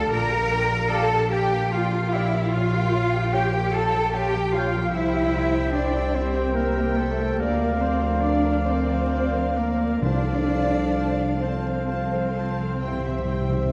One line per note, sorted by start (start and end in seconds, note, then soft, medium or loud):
0.00 0.14 D3 medium
0.00 0.49 F3 soft
0.00 0.69 D4 medium
0.00 1.10 F4 medium
0.00 0.12 A4 medium
0.00 0.12 A4 loud
0.00 2.56 D5 medium
0.00 0.12 F5 medium
0.00 0.12 A5 medium
0.00 0.13 A5 medium
0.00 0.14 A5 medium
0.11 4.90 A#1 medium
0.11 2.53 A#2 medium
0.11 0.30 F4 medium
0.11 0.89 A#4 loud
0.11 0.30 D5 medium
0.11 0.30 G5 medium
0.11 0.93 A#5 loud
0.11 0.63 A#5 loud
0.11 0.92 A#5 loud
0.31 1.73 A#3 medium
0.31 0.51 G4 medium
0.31 0.51 A#4 medium
0.31 0.51 F5 medium
0.50 1.51 F3 medium
0.50 0.71 F4 medium
0.50 0.71 D5 medium
0.50 0.71 G5 medium
0.70 2.56 D4 medium
0.70 0.91 G4 medium
0.70 0.91 A#4 medium
0.70 0.91 F5 medium
0.89 1.10 F4 medium
0.89 1.04 G4 medium
0.89 1.31 G4 medium
0.89 1.31 A4 loud
0.89 1.04 D5 medium
0.89 1.10 D5 medium
0.89 1.05 F5 medium
0.89 1.09 G5 medium
0.89 1.34 A5 loud
0.89 1.32 A5 medium
0.89 1.32 A5 loud
1.10 4.97 F4 medium
1.10 1.31 G4 medium
1.10 1.31 A#4 medium
1.10 1.32 F5 medium
1.31 1.52 F4 medium
1.31 1.71 G4 loud
1.31 3.32 G4 medium
1.31 1.52 D5 medium
1.31 1.72 G5 loud
1.31 1.52 G5 medium
1.31 1.72 G5 medium
1.31 1.74 G5 medium
1.52 1.92 F3 medium
1.52 1.72 G4 medium
1.52 1.72 A#4 medium
1.52 1.73 F5 medium
1.72 2.13 A#3 soft
1.72 1.91 F4 medium
1.72 2.13 F4 loud
1.72 1.91 D5 medium
1.72 2.15 F5 medium
1.72 2.13 F5 medium
1.72 2.14 F5 medium
1.72 1.92 G5 medium
1.92 2.33 F3 medium
1.92 2.13 G4 medium
1.92 2.13 A#4 medium
1.92 2.13 F5 medium
2.12 4.98 A#3 medium
2.12 2.53 E4 loud
2.12 2.33 F4 medium
2.12 2.27 G4 medium
2.12 2.33 D5 medium
2.12 2.28 D5 medium
2.12 2.53 E5 medium
2.12 2.55 E5 medium
2.12 2.28 F5 medium
2.12 2.33 G5 medium
2.33 2.74 F3 medium
2.33 2.53 G4 medium
2.33 2.53 A#4 medium
2.33 2.52 F5 medium
2.53 4.98 A#2 medium
2.53 2.72 F4 medium
2.53 3.33 F4 loud
2.53 2.72 C#5 medium
2.53 2.72 F5 medium
2.53 3.33 F5 medium
2.53 3.35 F5 medium
2.53 3.33 F5 loud
2.73 4.13 F3 medium
2.73 2.93 G4 medium
2.73 2.93 A#4 medium
2.73 2.93 G5 medium
2.93 3.92 G3 medium
2.93 3.13 F4 medium
2.93 3.13 C#5 medium
2.93 3.13 F5 medium
3.11 3.52 C#4 medium
3.11 3.34 G4 medium
3.11 3.34 A#4 medium
3.11 3.32 G5 medium
3.32 3.52 F4 medium
3.32 3.73 G4 medium
3.32 3.74 G4 loud
3.32 3.48 G4 medium
3.32 3.52 C#5 medium
3.32 3.48 C#5 medium
3.32 3.51 F5 medium
3.32 3.75 G5 medium
3.32 3.74 G5 medium
3.32 3.48 G5 medium
3.32 3.74 G5 medium
3.52 4.97 C#4 medium
3.52 3.74 G4 medium
3.52 3.73 A#4 medium
3.52 3.73 G5 medium
3.71 3.94 F4 medium
3.71 4.14 A4 loud
3.71 3.94 C#5 medium
3.71 3.92 F5 medium
3.71 4.14 A5 loud
3.71 4.15 A5 medium
3.71 4.14 A5 medium
3.91 4.33 G3 medium
3.91 4.14 G4 medium
3.91 4.14 A#4 medium
3.91 4.12 G5 medium
4.11 4.53 F3 medium
4.11 4.33 F4 medium
4.11 4.54 G4 loud
4.11 4.32 C#5 medium
4.11 4.31 F5 medium
4.11 4.42 G5 medium
4.11 4.54 G5 medium
4.32 4.73 G3 medium
4.32 4.54 G4 medium
4.32 4.54 A#4 medium
4.32 4.53 G5 medium
4.52 4.97 F3 medium
4.52 4.94 F4 medium
4.52 4.74 F4 medium
4.52 4.68 G4 medium
4.52 4.74 C#5 medium
4.52 4.68 C#5 medium
4.52 4.73 F5 medium
4.52 4.96 F5 medium
4.52 4.93 F5 medium
4.52 4.95 F5 medium
4.52 4.69 G5 medium
4.70 4.92 G5 medium
4.74 5.13 G3 medium
4.74 4.94 G4 medium
4.74 4.94 A#4 medium
4.91 7.36 C2 medium
4.91 7.43 C3 medium
4.91 5.73 E4 loud
4.91 5.12 E4 medium
4.91 6.12 G4 medium
4.91 5.12 C5 medium
4.91 6.12 C5 medium
4.91 5.11 E5 medium
4.91 5.52 E5 medium
4.91 5.76 E5 loud
4.96 5.75 E5 medium
4.96 6.12 G5 medium
5.11 6.55 G3 medium
5.11 5.34 G4 medium
5.11 5.34 E5 medium
5.11 5.33 G5 medium
5.33 5.72 C4 medium
5.33 5.55 E4 medium
5.33 5.55 C5 medium
5.33 5.54 E5 medium
5.53 5.75 G4 medium
5.53 5.75 E5 medium
5.53 5.74 G5 medium
5.73 6.34 C4 medium
5.73 6.15 D4 medium
5.73 5.94 E4 medium
5.73 5.94 C5 medium
5.73 6.16 D5 medium
5.73 6.15 D5 medium
5.73 5.93 E5 medium
5.94 6.16 G4 medium
5.94 7.42 C5 medium
5.94 6.16 E5 medium
5.94 6.15 G5 medium
6.15 6.56 C4 medium
6.15 6.36 E4 medium
6.15 7.42 G4 medium
6.15 7.37 G4 medium
6.15 6.57 C5 medium
6.15 6.56 C5 medium
6.15 6.55 C5 medium
6.15 6.36 C5 medium
6.15 7.37 C5 medium
6.15 6.36 E5 medium
6.15 7.37 G5 medium
6.35 6.75 C4 medium
6.35 6.57 G4 medium
6.35 6.57 E5 soft
6.35 6.56 G5 medium
6.55 6.96 G3 soft
6.55 6.97 A#3 medium
6.55 6.75 E4 medium
6.55 6.97 A#4 medium
6.55 6.98 A#4 medium
6.55 6.97 A#4 medium
6.55 6.75 C5 medium
6.55 6.76 E5 medium
6.76 7.17 C4 medium
6.76 6.98 G4 medium
6.76 6.98 E5 medium
6.76 6.98 G5 medium
6.97 7.42 G3 medium
6.97 7.39 A3 medium
6.97 7.19 E4 medium
6.97 7.42 A4 medium
6.97 7.39 A4 medium
6.97 7.40 A4 medium
6.97 7.19 C5 medium
6.97 7.19 E5 medium
7.19 7.43 C4 medium
7.19 7.40 G4 medium
7.19 7.39 E5 soft
7.19 7.40 G5 medium
7.38 10.03 D2 medium
7.38 10.06 D3 medium
7.38 7.79 A#3 medium
7.38 7.80 A#4 medium
7.38 7.81 A#4 medium
7.38 7.83 A#4 medium
7.38 9.99 A#4 medium
7.38 7.59 D5 medium
7.38 10.03 D5 medium
7.38 7.59 D5 medium
7.38 7.59 F5 medium
7.38 10.01 F5 medium
7.60 9.11 D4 soft
7.60 7.81 A#4 medium
7.60 7.79 D5 medium
7.60 7.81 F5 medium
7.80 8.89 F3 soft
7.80 8.23 C4 medium
7.80 8.23 C5 medium
7.80 8.22 C5 medium
7.80 7.99 D5 soft
7.80 8.02 D5 medium
7.80 8.02 F5 medium
8.01 8.45 F4 soft
8.01 8.23 A#4 medium
8.01 8.21 D5 medium
8.01 8.23 F5 medium
8.21 8.67 D4 medium
8.21 8.67 A#4 medium
8.21 8.65 D5 medium
8.21 8.43 D5 medium
8.21 8.67 D5 medium
8.21 8.43 D5 medium
8.21 8.43 F5 medium
8.44 10.72 F4 medium
8.44 8.67 A#4 medium
8.44 8.66 D5 medium
8.44 8.67 F5 soft
8.66 9.56 C4 medium
8.66 10.06 A#4 medium
8.66 9.58 C5 medium
8.66 9.56 C5 medium
8.66 9.57 C5 medium
8.66 8.89 D5 medium
8.66 8.87 D5 medium
8.66 8.90 F5 soft
8.88 9.33 F3 soft
8.88 9.11 A#4 medium
8.88 9.10 D5 soft
8.88 9.12 F5 medium
9.10 9.57 D4 soft
9.10 9.32 D5 medium
9.10 9.32 D5 soft
9.10 9.33 F5 medium
9.34 9.79 F3 soft
9.34 9.56 A#4 soft
9.34 9.55 D5 medium
9.34 9.57 F5 medium
9.56 10.02 A#3 medium
9.56 10.07 D4 soft
9.56 10.01 A#4 medium
9.56 10.03 A#4 medium
9.56 9.78 D5 soft
9.56 9.79 D5 medium
9.56 9.79 F5 medium
9.78 10.50 F3 soft
9.78 10.03 A#4 medium
9.78 10.02 D5 medium
9.78 10.02 F5 medium
10.02 13.72 C2 medium
10.02 11.38 C3 medium
10.02 12.84 C3 medium
10.02 11.39 D4 medium
10.02 10.24 F4 medium
10.02 11.40 A4 medium
10.02 10.24 C5 medium
10.02 11.40 C5 medium
10.02 11.09 D5 medium
10.02 11.39 D5 medium
10.02 11.42 D5 medium
10.02 11.39 F5 medium
10.02 10.25 A5 medium
10.24 11.88 C4 soft
10.24 10.48 A4 soft
10.24 10.49 F5 soft
10.47 11.65 F3 soft
10.47 10.71 F4 soft
10.47 10.71 C5 soft
10.47 10.72 A5 medium
10.71 11.19 F4 medium
10.71 10.95 A4 soft
10.71 10.96 F5 medium
10.94 11.16 F4 medium
10.94 11.41 A4 soft
10.94 11.16 C5 medium
10.94 11.17 A5 soft
11.17 12.87 F4 soft
11.17 11.41 A4 soft
11.17 11.42 F5 soft
11.40 13.72 C4 medium
11.40 11.64 F4 medium
11.40 12.87 A4 soft
11.40 12.65 A4 medium
11.40 11.64 C5 soft
11.40 13.72 C5 medium
11.40 12.65 C5 medium
11.40 12.66 F5 medium
11.40 11.65 A5 soft
11.45 13.72 C5 medium
11.63 12.11 F3 soft
11.63 11.88 A4 soft
11.63 11.88 F5 soft
11.87 12.36 C4 soft
11.87 12.10 F4 soft
11.87 12.10 C5 soft
11.87 12.10 A5 soft
12.12 12.58 F3 soft
12.12 12.36 A4 medium
12.12 12.36 F5 soft
12.36 13.06 C4 soft
12.36 12.59 F4 medium
12.36 12.59 C5 medium
12.36 12.59 A5 soft
12.58 12.87 F3 soft
12.58 12.83 A4 soft
12.58 12.82 F5 soft
12.81 12.91 C3 soft
12.81 13.72 C3 medium
12.81 13.04 E4 medium
12.81 13.72 G4 medium
12.81 13.72 C5 medium
12.81 13.04 C5 medium
12.81 13.72 E5 medium
12.81 13.04 G5 soft
12.92 12.99 C3 soft
13.00 13.07 C3 soft
13.00 13.28 E5 soft
13.05 13.16 C3 soft
13.05 13.72 C4 soft
13.05 13.29 G4 soft
13.05 13.29 E5 soft
13.18 13.24 C3 soft
13.25 13.32 C3 soft
13.25 13.52 C5 soft
13.25 13.51 G5 soft
13.29 13.72 G3 soft
13.29 13.52 E4 soft
13.33 13.40 C3 soft
13.41 13.47 C3 soft
13.49 13.56 C3 soft
13.49 13.72 G4 soft
13.49 13.72 E5 soft
13.53 13.72 E4 soft
13.53 13.72 E5 soft
13.57 13.64 C3 medium
13.66 13.72 C3 soft